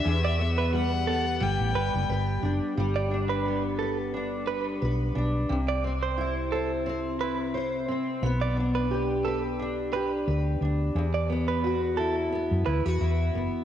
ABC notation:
X:1
M:4/4
L:1/16
Q:"Swing 16ths" 1/4=88
K:G
V:1 name="Violin"
e4 f4 g6 z2 | z16 | z16 | z16 |
z16 |]
V:2 name="Clean electric guitar"
z d z B2 z A z3 B z4 z | z d z B2 z A z3 B z4 z | z d z c2 z A z3 B z4 z | z d z B2 z A z3 B z4 z |
z d z B2 z A z3 B z4 z |]
V:3 name="Steel-string acoustic guitar"
E,,2 B,2 G,2 B,2 G,2 B,2 B2 D2 | G,2 D2 B,2 B2 D2 B,2 B2 D2 | C,2 C2 E2 c2 C2 E2 c2 C2 | B,2 D2 G2 B2 D2 G2 B2 D2 |
E,,2 B,2 F2 E2 B,2 E F E2 B,2 |]
V:4 name="Fingered electric bass" clef=bass
E,,8 G,,, A,,, G,,, F,,, G,,,2 F,,, z | G,,,12 B,,,2 B,,,2 | C,,12- C,,2 z2 | B,,,12 D,,2 D,,2 |
E,,8 z F,, D,, E,, E,,2 F,,, z |]